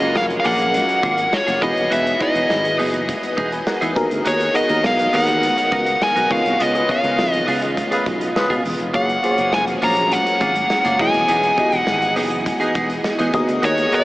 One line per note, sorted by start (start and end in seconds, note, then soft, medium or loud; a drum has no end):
0.00 0.16 F#1 medium
0.00 1.60 F#3 medium
0.00 0.17 A#3 soft
0.00 1.63 C#4 medium
0.00 1.63 F4 medium
0.00 0.17 F4 medium
0.00 1.60 F#4 medium
0.00 1.62 F#4 medium
0.00 1.62 G#4 medium
0.00 3.92 G#4 medium
0.00 0.17 G#4 medium
0.00 1.60 A#4 medium
0.00 1.64 A#4 medium
0.00 0.14 D#5 medium
0.00 closed hi-hat medium
0.16 0.38 F1 medium
0.16 0.23 F5 loud
0.16 snare loud
0.29 muted clean electric guitar stroke soft
0.29 closed hi-hat medium
0.29 low conga medium
0.40 0.45 F5 medium
0.44 0.78 A#1 medium
0.44 0.65 A#3 medium
0.44 0.59 F4 medium
0.44 0.58 G#4 medium
0.44 1.36 F#5 loud
0.44 open hi-hat medium
0.59 muted clean electric guitar stroke soft
0.59 closed hi-hat medium
0.59 low conga medium
0.74 closed hi-hat medium
0.74 muted conga soft
0.74 high conga medium
0.88 muted clean electric guitar stroke soft
0.88 closed hi-hat medium
1.03 1.25 G#1 medium
1.03 1.24 A#3 medium
1.03 1.17 F4 medium
1.03 1.16 G#4 medium
1.03 kick loud
1.03 closed hi-hat medium
1.03 high conga medium
1.18 muted clean electric guitar stroke soft
1.18 closed hi-hat medium
1.32 1.61 C#5 medium
1.32 muted clean electric guitar stroke soft
1.32 snare loud
1.32 muted conga soft
1.47 1.58 F#1 medium
1.47 1.61 A#3 medium
1.47 1.61 F4 medium
1.47 1.61 G#4 medium
1.47 snare soft
1.47 closed hi-hat medium
1.47 high conga medium
1.61 1.73 E1 loud
1.61 3.94 E3 medium
1.61 1.82 B3 medium
1.61 2.13 D#4 medium
1.61 1.76 D#4 medium
1.61 2.13 E4 medium
1.61 2.13 F#4 medium
1.61 1.75 G#4 loud
1.61 2.14 G#4 medium
1.61 2.14 B4 medium
1.61 6.26 D#5 medium
1.61 1.92 D#5 medium
1.61 kick loud
1.61 closed hi-hat medium
1.61 low conga medium
1.76 1.88 D#1 medium
1.76 muted clean electric guitar stroke soft
1.76 closed hi-hat medium
1.90 2.13 E1 loud
1.90 2.11 B3 medium
1.90 2.05 D#4 loud
1.90 2.04 G#4 medium
1.90 2.22 E5 medium
1.90 closed hi-hat loud
1.90 muted conga soft
2.05 muted clean electric guitar stroke soft
2.05 closed hi-hat medium
2.05 muted conga soft
2.20 2.35 B3 medium
2.20 3.23 D#4 medium
2.20 2.34 D#4 medium
2.20 3.23 E4 medium
2.20 3.23 F#4 medium
2.20 3.23 G#4 medium
2.20 2.33 G#4 medium
2.20 3.23 B4 medium
2.20 2.76 D#5 medium
2.20 kick loud
2.20 closed hi-hat medium
2.34 2.46 E1 loud
2.34 2.52 B3 soft
2.34 2.51 D#4 medium
2.34 2.51 G#4 medium
2.34 closed hi-hat medium
2.50 2.79 G#1 loud
2.50 snare loud
2.64 muted clean electric guitar stroke medium
2.64 closed hi-hat medium
2.64 low conga medium
2.78 3.12 F#1 medium
2.78 2.99 B3 medium
2.78 2.92 D#4 medium
2.78 2.92 G#4 loud
2.78 open hi-hat medium
2.93 muted clean electric guitar stroke medium
2.93 closed hi-hat medium
2.93 low conga medium
3.07 muted clean electric guitar stroke soft
3.07 kick medium
3.07 closed hi-hat medium
3.07 high conga medium
3.22 muted clean electric guitar stroke soft
3.22 closed hi-hat medium
3.22 muted conga soft
3.37 3.60 E1 medium
3.37 3.58 B3 medium
3.37 3.51 D#4 loud
3.37 3.50 G#4 loud
3.37 kick loud
3.37 closed hi-hat medium
3.37 high conga medium
3.52 3.67 B4 medium
3.52 3.66 G#5 medium
3.52 muted clean electric guitar stroke medium
3.52 closed hi-hat medium
3.67 3.81 A#4 medium
3.67 3.81 F#5 medium
3.67 muted clean electric guitar stroke soft
3.67 snare loud
3.67 muted conga soft
3.81 3.93 E2 medium
3.81 3.95 B3 medium
3.81 3.96 D#4 medium
3.81 3.96 G#4 medium
3.81 3.95 G#4 medium
3.81 4.09 E5 medium
3.81 closed hi-hat medium
3.81 muted conga soft
3.81 high conga medium
3.95 4.07 D#2 loud
3.95 6.28 D#3 medium
3.95 4.47 B3 medium
3.95 6.28 B3 medium
3.95 4.47 D#4 medium
3.95 4.47 F#4 medium
3.95 6.28 F#4 medium
3.95 4.47 G#4 medium
3.95 6.28 A#4 medium
3.95 4.48 A#4 loud
3.95 muted clean electric guitar stroke soft
3.95 kick loud
3.95 closed hi-hat medium
3.95 low conga medium
4.11 4.22 D2 medium
4.11 muted clean electric guitar stroke soft
4.11 closed hi-hat medium
4.25 4.48 D#2 medium
4.25 4.46 B3 medium
4.25 4.39 F#4 loud
4.25 4.39 A#4 medium
4.25 4.54 C#5 medium
4.25 closed hi-hat loud
4.25 muted conga soft
4.40 muted clean electric guitar stroke soft
4.40 closed hi-hat medium
4.53 5.57 B3 medium
4.53 4.69 B3 medium
4.53 5.57 D#4 medium
4.53 5.57 F#4 medium
4.53 4.69 F#4 medium
4.53 5.57 G#4 medium
4.53 5.58 A#4 medium
4.53 4.68 A#4 medium
4.53 4.83 D#5 medium
4.53 closed hi-hat medium
4.69 4.81 D#2 loud
4.69 4.86 B3 soft
4.69 4.86 F#4 medium
4.69 4.85 A#4 medium
4.69 closed hi-hat soft
4.84 5.06 B1 loud
4.84 5.15 F5 medium
4.84 snare loud
4.84 muted conga soft
4.98 muted clean electric guitar stroke soft
4.98 closed hi-hat medium
4.98 low conga medium
5.13 5.46 D#2 medium
5.13 5.34 B3 loud
5.13 5.27 F#4 loud
5.13 5.27 A#4 loud
5.13 6.03 F#5 loud
5.13 open hi-hat medium
5.28 muted clean electric guitar stroke soft
5.28 closed hi-hat medium
5.28 low conga medium
5.43 closed hi-hat medium
5.43 muted conga soft
5.43 high conga medium
5.57 muted clean electric guitar stroke soft
5.57 closed hi-hat medium
5.71 5.94 C#2 medium
5.71 5.92 B3 medium
5.71 5.86 F#4 medium
5.71 5.85 A#4 medium
5.71 kick loud
5.71 snare soft
5.71 closed hi-hat medium
5.71 high conga medium
5.86 muted clean electric guitar stroke soft
5.86 closed hi-hat medium
6.01 6.32 G#5 loud
6.01 muted clean electric guitar stroke soft
6.01 snare loud
6.15 6.27 B1 medium
6.15 6.29 B3 medium
6.15 6.30 F#4 medium
6.15 6.31 A#4 medium
6.15 closed hi-hat medium
6.15 high conga medium
6.29 6.42 C#2 medium
6.29 8.91 C#3 medium
6.29 6.81 B3 medium
6.29 8.91 B3 medium
6.29 6.51 B3 medium
6.29 6.82 D#4 medium
6.29 6.82 F4 medium
6.29 8.91 F4 medium
6.29 6.45 F4 medium
6.29 6.82 G#4 medium
6.29 6.44 G#4 medium
6.29 6.82 C#5 medium
6.29 6.62 F5 loud
6.29 kick loud
6.29 crash medium
6.29 low conga medium
6.45 6.56 C2 medium
6.45 muted clean electric guitar stroke soft
6.45 closed hi-hat medium
6.60 6.82 C#2 medium
6.60 6.80 B3 medium
6.60 6.74 F4 medium
6.60 6.73 G#4 medium
6.60 6.88 D#5 medium
6.60 closed hi-hat loud
6.75 6.87 B3 medium
6.75 6.87 F4 medium
6.75 6.87 G#4 medium
6.75 6.87 B4 medium
6.75 muted clean electric guitar stroke soft
6.75 closed hi-hat soft
6.75 muted conga soft
6.88 7.92 B3 medium
6.88 7.04 B3 medium
6.88 7.92 D#4 medium
6.88 7.92 F4 medium
6.88 7.03 F4 medium
6.88 7.92 G#4 medium
6.88 7.02 G#4 medium
6.88 7.92 C#5 medium
6.88 7.33 F5 medium
6.88 kick medium
6.88 closed hi-hat medium
7.03 7.15 C#2 medium
7.03 7.20 B3 soft
7.03 7.20 F4 medium
7.03 7.20 G#4 medium
7.03 closed hi-hat medium
7.18 7.40 F2 medium
7.18 snare loud
7.32 7.45 D#5 medium
7.32 muted clean electric guitar stroke soft
7.32 closed hi-hat medium
7.32 muted conga soft
7.32 low conga medium
7.48 7.81 C#2 medium
7.48 7.68 B3 medium
7.48 7.62 F4 medium
7.48 7.61 G#4 loud
7.48 open hi-hat medium
7.62 muted clean electric guitar stroke soft
7.62 closed hi-hat medium
7.62 low conga medium
7.77 muted clean electric guitar stroke soft
7.77 kick medium
7.77 closed hi-hat medium
7.77 high conga medium
7.91 8.04 B3 medium
7.91 8.05 B3 medium
7.91 8.04 F4 medium
7.91 8.06 F4 medium
7.91 8.06 G#4 medium
7.91 8.04 G#4 medium
7.91 8.04 B4 medium
7.91 closed hi-hat medium
8.05 8.28 B1 medium
8.05 muted clean electric guitar stroke soft
8.05 kick loud
8.05 snare soft
8.05 closed hi-hat medium
8.05 high conga medium
8.21 muted clean electric guitar stroke soft
8.21 closed hi-hat medium
8.35 8.55 B3 medium
8.35 8.55 F4 medium
8.35 8.54 G#4 medium
8.35 8.55 B4 loud
8.35 muted clean electric guitar stroke soft
8.35 snare loud
8.35 muted conga soft
8.50 8.61 B2 medium
8.50 8.63 B3 medium
8.50 8.64 F4 medium
8.50 8.64 G#4 medium
8.50 kick medium
8.50 closed hi-hat medium
8.50 high conga medium
8.64 8.76 E1 medium
8.64 muted clean electric guitar stroke soft
8.64 open hi-hat medium
8.64 low conga medium
8.79 8.91 F1 medium
8.79 muted clean electric guitar stroke medium
8.79 closed hi-hat medium
8.93 9.16 F#1 loud
8.93 10.97 F#3 medium
8.93 9.14 A#3 medium
8.93 9.20 A#3 medium
8.93 10.97 C#4 medium
8.93 9.20 F4 medium
8.93 9.08 F4 medium
8.93 9.20 F#4 medium
8.93 13.29 G#4 medium
8.93 9.20 G#4 medium
8.93 9.07 G#4 medium
8.93 10.97 A#4 medium
8.93 9.20 C#5 medium
8.93 9.54 F#5 medium
8.93 kick loud
8.93 closed hi-hat loud
9.08 muted clean electric guitar stroke soft
9.08 closed hi-hat medium
9.08 muted conga soft
9.23 9.38 A#3 medium
9.23 10.26 A#3 medium
9.23 10.26 F4 medium
9.23 9.37 F4 medium
9.23 10.26 F#4 medium
9.23 10.27 G#4 medium
9.23 9.36 G#4 medium
9.23 9.30 C5 medium
9.23 closed hi-hat medium
9.31 10.30 C#5 medium
9.37 9.53 F#1 medium
9.37 9.55 A#3 medium
9.37 9.54 F4 medium
9.37 9.54 G#4 medium
9.37 closed hi-hat soft
9.53 9.75 F1 medium
9.53 9.62 G#5 medium
9.53 snare loud
9.66 muted clean electric guitar stroke medium
9.66 closed hi-hat medium
9.66 muted conga soft
9.66 low conga medium
9.82 10.15 A#1 medium
9.82 10.03 A#3 medium
9.82 9.96 F4 medium
9.82 9.95 G#4 medium
9.82 10.13 A#5 medium
9.82 open hi-hat medium
9.97 muted clean electric guitar stroke soft
9.97 closed hi-hat medium
9.97 low conga medium
10.12 11.01 F#5 medium
10.12 closed hi-hat medium
10.12 muted conga soft
10.12 high conga medium
10.26 muted clean electric guitar stroke soft
10.26 closed hi-hat medium
10.40 10.63 G#1 medium
10.40 10.61 A#3 medium
10.40 10.55 F4 loud
10.40 10.54 G#4 loud
10.40 kick loud
10.40 closed hi-hat medium
10.40 high conga medium
10.55 muted clean electric guitar stroke soft
10.55 closed hi-hat medium
10.70 muted clean electric guitar stroke soft
10.70 snare loud
10.70 muted conga soft
10.85 10.96 F#1 medium
10.85 10.99 A#3 medium
10.85 11.00 F4 medium
10.85 10.99 G#4 medium
10.85 snare soft
10.85 closed hi-hat medium
10.85 muted conga soft
10.85 high conga medium
10.99 11.10 E1 medium
10.99 13.31 E3 medium
10.99 11.51 B3 medium
10.99 11.20 B3 medium
10.99 11.13 D#4 medium
10.99 11.51 E4 medium
10.99 11.51 F#4 medium
10.99 11.51 G#4 medium
10.99 11.13 G#4 medium
10.99 14.04 D#5 medium
10.99 11.51 D#5 medium
10.99 11.78 G#5 medium
10.99 kick loud
10.99 crash medium
10.99 low conga medium
11.14 11.25 D#1 medium
11.14 muted clean electric guitar stroke soft
11.14 closed hi-hat medium
11.28 11.51 E1 loud
11.28 11.49 B3 medium
11.28 11.43 D#4 medium
11.28 11.42 G#4 loud
11.28 closed hi-hat loud
11.28 muted conga soft
11.43 muted clean electric guitar stroke medium
11.43 closed hi-hat soft
11.43 muted conga soft
11.57 12.60 B3 medium
11.57 11.72 B3 medium
11.57 11.72 D#4 medium
11.57 12.61 E4 medium
11.57 12.61 F#4 medium
11.57 11.65 G4 medium
11.57 11.71 G#4 medium
11.57 12.61 D#5 medium
11.57 kick medium
11.57 closed hi-hat medium
11.65 12.64 G#4 medium
11.72 11.84 E1 medium
11.72 11.89 B3 soft
11.72 11.89 D#4 soft
11.72 11.89 G#4 medium
11.72 closed hi-hat medium
11.78 12.13 F#5 medium
11.87 12.17 G#1 medium
11.87 snare loud
12.01 muted clean electric guitar stroke soft
12.01 closed hi-hat medium
12.01 muted conga soft
12.01 low conga medium
12.16 12.50 F#1 medium
12.16 12.37 B3 medium
12.16 12.30 D#4 loud
12.16 12.29 G#4 loud
12.16 open hi-hat medium
12.31 muted clean electric guitar stroke soft
12.31 closed hi-hat medium
12.31 low conga medium
12.45 muted clean electric guitar stroke soft
12.45 kick medium
12.45 closed hi-hat loud
12.45 high conga medium
12.60 12.73 B3 medium
12.60 12.74 D#4 medium
12.60 12.75 G#4 medium
12.60 closed hi-hat medium
12.60 muted conga soft
12.75 12.97 E1 loud
12.75 12.91 B3 medium
12.75 12.89 D#4 medium
12.75 12.88 G#4 medium
12.75 kick loud
12.75 snare soft
12.75 closed hi-hat medium
12.75 high conga medium
12.90 muted clean electric guitar stroke soft
12.90 closed hi-hat medium
13.04 muted clean electric guitar stroke soft
13.04 snare loud
13.19 13.30 E2 medium
13.19 13.32 B3 medium
13.19 13.33 D#4 medium
13.19 13.34 G#4 medium
13.19 snare soft
13.19 closed hi-hat medium
13.19 high conga medium
13.33 13.45 D#2 loud
13.33 14.04 D#3 medium
13.33 13.85 B3 loud
13.33 14.04 B3 medium
13.33 14.04 F#4 medium
13.33 13.85 F#4 medium
13.33 13.85 G#4 medium
13.33 14.04 A#4 medium
13.33 13.85 A#4 medium
13.33 13.86 D#5 loud
13.33 muted clean electric guitar stroke soft
13.33 kick loud
13.33 closed hi-hat medium
13.33 low conga medium
13.48 13.60 D2 medium
13.48 muted clean electric guitar stroke medium
13.48 closed hi-hat medium
13.62 13.85 D#2 loud
13.62 13.83 B3 medium
13.62 13.77 F#4 medium
13.62 13.76 A#4 loud
13.62 13.91 C#5 medium
13.62 closed hi-hat loud
13.62 muted conga soft
13.77 muted clean electric guitar stroke soft
13.77 closed hi-hat soft
13.77 muted conga soft
13.92 14.04 B3 medium
13.92 14.04 F#4 medium
13.92 14.04 G#4 medium
13.92 14.04 A#4 medium
13.92 13.99 C#5 medium
13.92 14.04 D#5 loud
13.92 closed hi-hat medium
13.99 14.04 D#5 medium